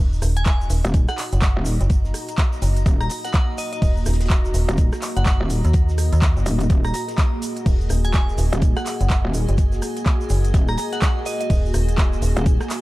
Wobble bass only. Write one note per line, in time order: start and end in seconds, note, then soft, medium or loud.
0.85 1.06 D#1 loud
1.57 1.78 D#1 loud
2.86 3.08 D#1 loud
4.69 4.90 D#1 medium
5.41 5.62 D#1 loud
6.46 6.69 D#1 medium
6.70 6.93 D#1 loud
8.53 8.74 D#1 medium
9.25 9.46 D#1 loud
10.54 10.77 D#1 loud
12.37 12.58 D#1 loud